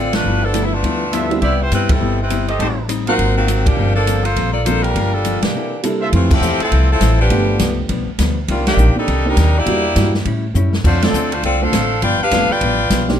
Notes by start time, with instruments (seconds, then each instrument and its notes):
Already playing: upright bass A1, hollow-body jazz guitar D3 A3 C4 F4, saxophone section C4 F4 A4 D5
0.13 saxophone section A3 D4 F4 B4, snare, ride
0.24 upright bass G1, hollow-body jazz guitar G2 F3 B3 E4
0.44 saxophone section F3 B3 D4 A4
0.53 hollow-body jazz guitar G2 F3 B3 E4, grand piano F3 A3 B3 D4 E4, hi-hat pedal, ride
0.65 saxophone section E4
0.74 saxophone section A3 B3 D4 F4
0.82 upright bass D2, hollow-body jazz guitar G2 F3 B3 E4, kick, ride
1.12 hollow-body jazz guitar G2 F3 B3 E4, trumpet section F4 A4 B4 E5, hi-hat pedal, ride
1.30 grand piano G3 B3 C4 D4 E4, ride
1.41 upright bass C2, hollow-body jazz guitar C3 G3 B3 E4, saxophone section B3 E4 G4 D5, trumpet section G4 B4 C5 E5, kick, ride
1.62 saxophone section G3 B3 E4 C5
1.71 upright bass G2, hollow-body jazz guitar C3 G3 B3 E4, saxophone section G3 C4 E4 B4, hi-hat pedal, ride
1.89 saxophone section G3 C4 E4 A4, kick, ride
1.99 upright bass G1, hollow-body jazz guitar C3 G3 B3 E4
2.21 saxophone section G3 C4 E4 B4
2.30 hollow-body jazz guitar C3 G3 B3 E4, hi-hat pedal, ride
2.48 trumpet section G4 A4 C5 D#5, ride
2.59 upright bass A1, hollow-body jazz guitar A2 G3 C4 D#4, saxophone section A3 D#4 G4 C5, kick, ride
2.88 hollow-body jazz guitar A2 G3 C4 D#4, hi-hat pedal, ride
3.07 grand piano F#3 A#3 C4 D#4 F4, saxophone section D#4 A#4 C5 F#5, trumpet section F#4 A#4 C5 F5, ride
3.18 upright bass G#1, hollow-body jazz guitar G#2 F#3 C4 F4, kick, ride
3.37 saxophone section D#3 A#3 C4 F#4
3.47 hollow-body jazz guitar G#2 F#3 C4 F4, hi-hat pedal, ride
3.66 saxophone section F3 A#3 D4 G4, kick, ride
3.77 upright bass G1, hollow-body jazz guitar G2 F3 A#3 C4
3.95 saxophone section F3 A#3 D4 A4
4.06 hollow-body jazz guitar G2 F3 A#3 C4, hi-hat pedal, ride
4.24 saxophone section A#3 F4 A4 C5, ride
4.36 upright bass A#1, hollow-body jazz guitar G2 F3 A#3 C4, kick, ride
4.53 saxophone section A#3 F4 A4 D5
4.64 hollow-body jazz guitar G2 F3 A#3, grand piano F3 A#3 C4 D4 A4, saxophone section A#3 F4 A4 C5, hi-hat pedal, ride
4.68 hollow-body jazz guitar C4
4.83 saxophone section G3 D4 F4 A#4, ride
4.95 upright bass G1, hollow-body jazz guitar G2 F3 A#3 D4, kick, ride
5.13 saxophone section G3 D4 F4 A4
5.25 hollow-body jazz guitar G2 F3 A#3 D4, hi-hat pedal, ride
5.42 saxophone section E3 A#3 D4 G4, muted upright bass stroke, snare, ride
5.54 hollow-body jazz guitar C3 A#3 E4 A4
5.83 grand piano C3 G3 A#3 D4 E4 A4, hollow-body jazz guitar C3 A#3 E4 A4, hi-hat pedal, ride
6.01 trumpet section F4 A4 C5 E5
6.12 hollow-body jazz guitar F2 E3 A3 C4, upright bass F2, saxophone section E3 A3 C4, grand piano A3 C4 E4 F4 G4, kick, ride
6.16 saxophone section F4
6.31 saxophone section F3 C4 E4 G4, kick, crash
6.41 upright bass E2, hollow-body jazz guitar F2 E3 A3 C4, hi-hat pedal
6.60 saxophone section F3 E4 A4, muted upright bass stroke, ride
6.64 saxophone section C4
6.70 upright bass C2, hollow-body jazz guitar F2 E3 A3 C4, kick, ride
6.92 saxophone section F3 C4 E4 A4
7.00 upright bass A1, hollow-body jazz guitar F2 E3 A3 C4, kick, snare, hi-hat pedal, ride
7.21 saxophone section F3 B3 D4 G4
7.30 upright bass G1, hollow-body jazz guitar G2 F3 B3 D4, grand piano A3 B3 D4 F4 G4, kick, ride
7.59 upright bass C2, hollow-body jazz guitar G2 F3 B3 D4, kick, snare, hi-hat pedal, ride
7.88 upright bass B1, hollow-body jazz guitar G2 F3 B3 D4, kick, ride
8.07 muted upright bass stroke
8.18 upright bass D2, hollow-body jazz guitar G2 F3 B3 D4, kick, snare, hi-hat pedal, ride
8.48 upright bass C2, hollow-body jazz guitar C3 D#3 A#3 D4, saxophone section G3 A#3 D4 F4, kick, ride
8.67 saxophone section D#3 A#3 D4 G4, snare, ride
8.77 upright bass A#1, hollow-body jazz guitar C3 D#3 A#3 D4, hi-hat pedal
8.96 saxophone section G3 D4 D#4 A4, grand piano A#3 C4 D4 D#4 G4
9.08 upright bass C2, hollow-body jazz guitar C3 D#3 A#3 D4, kick, ride
9.25 saxophone section G3 D4 D#4 A#4, grand piano A#3 C4 D4 D#4 G4
9.37 upright bass D#2, hollow-body jazz guitar C3 D#3 A#3 D4, kick, snare, hi-hat pedal, ride
9.58 saxophone section A#3 E4 G4 D5
9.66 upright bass E2, hollow-body jazz guitar E3 A#3 D4 G4, grand piano G3 A#3 D4 E4 F#4, kick, ride
9.96 upright bass G2, hollow-body jazz guitar E3 A#3 D4 G4, grand piano G3 A#3 D4 E4 F#4, kick, snare, hi-hat pedal, ride
10.14 snare
10.24 hollow-body jazz guitar A2 G3 C#4 E4, upright bass A2, kick, ride
10.55 upright bass F#2, hollow-body jazz guitar A2 G3 C#4 E4, hi-hat pedal
10.73 snare
10.84 upright bass F2, hollow-body jazz guitar D3 A3 C4 F4, saxophone section A3 D4 F4 C5, kick, crash
11.02 saxophone section F3 C4 D4 A4, grand piano A3 C4 D4 F4 A4, snare, ride
11.13 upright bass D2, hollow-body jazz guitar D3 A3 C4 F4, hi-hat pedal
11.32 saxophone section A3 D4 F4 C5, ride
11.43 upright bass C2, hollow-body jazz guitar D3 A3 C4 F4, saxophone section C4 F4 A4 D5, kick, ride
11.61 grand piano A3 C4 D4 F4 A4, saxophone section D4 A4 C5 F5
11.72 upright bass A1, hollow-body jazz guitar D3 A3 C4 F4, kick, snare, hi-hat pedal, ride
12.02 upright bass G1, hollow-body jazz guitar G2 F3 B3 D4, saxophone section F4 B4 D5 G5, kick, ride
12.19 saxophone section D4 G4 B4 F5, muted upright bass stroke
12.31 upright bass F1, hollow-body jazz guitar G2 F3 B3 D4, grand piano A3 B3 D4 F4 G4, kick, snare, hi-hat pedal, ride
12.49 saxophone section F4 B4 D5 G5, muted upright bass stroke
12.61 upright bass A1, hollow-body jazz guitar G2 F3 B3 D4, kick, ride
12.90 upright bass B1, hollow-body jazz guitar G2 F3 B3 D4, kick, snare, hi-hat pedal, ride
13.08 grand piano A#3 C4 D4 D#4 G4, snare